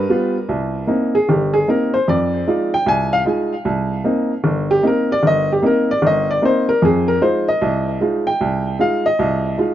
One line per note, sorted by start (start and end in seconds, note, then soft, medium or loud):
0.00 0.32 B4 loud
0.09 0.36 G3 medium
0.09 0.36 B3 medium
0.09 0.37 F4 medium
0.49 0.83 C2 medium
0.87 1.15 A#3 medium
0.87 1.15 C4 medium
0.87 1.15 D#4 medium
1.15 1.28 G#4 medium
1.29 1.63 G1 medium
1.29 1.53 G4 medium
1.54 1.67 G#4 medium
1.68 1.95 A#3 medium
1.68 1.95 C4 soft
1.68 1.95 D#4 medium
1.68 1.93 A#4 medium
1.94 2.07 C5 medium
2.08 2.42 F2 medium
2.08 2.69 D5 medium
2.47 2.74 G#3 medium
2.47 2.74 D#4 medium
2.47 2.74 F4 medium
2.74 2.87 G5 loud
2.86 3.20 C2 medium
2.86 3.12 G#5 loud
3.13 3.21 F5 loud
3.25 3.53 G#3 medium
3.25 3.53 D#4 soft
3.25 3.53 F4 medium
3.65 4.00 C2 medium
4.04 4.32 A#3 medium
4.04 4.32 C4 medium
4.04 4.32 D#4 medium
4.44 4.78 G1 medium
4.71 4.84 G4 medium
4.83 5.11 A#3 medium
4.83 5.11 C4 medium
4.83 5.11 D#4 medium
4.87 5.11 A#4 medium
5.12 5.25 D5 loud
5.23 5.57 G1 medium
5.27 5.50 D#5 loud
5.52 5.65 G4 medium
5.62 5.90 A#3 medium
5.62 5.90 C4 soft
5.62 5.90 D#4 medium
5.66 5.90 A#4 medium
5.91 6.04 D5 medium
6.02 6.37 G1 medium
6.07 6.30 D#5 loud
6.31 6.43 D5 medium
6.42 6.69 A#3 medium
6.42 6.70 C4 soft
6.42 6.70 D#4 medium
6.42 6.69 C5 medium
6.69 6.82 A#4 medium
6.82 7.16 F2 medium
6.82 7.08 G#4 medium
7.08 7.21 A#4 medium
7.21 7.49 G#3 medium
7.21 7.49 D#4 medium
7.21 7.49 F4 medium
7.21 7.47 C5 medium
7.48 7.85 D#5 medium
7.62 7.96 C2 medium
8.01 8.28 G#3 medium
8.01 8.28 D#4 medium
8.01 8.28 F4 medium
8.27 8.76 G5 medium
8.41 8.75 C2 medium
8.79 9.06 G#3 medium
8.79 9.07 D#4 medium
8.79 9.07 F4 medium
8.79 9.05 F5 medium
9.06 9.42 D#5 loud
9.19 9.53 C2 medium
9.58 9.74 G#3 medium
9.58 9.74 D#4 medium
9.58 9.74 F4 medium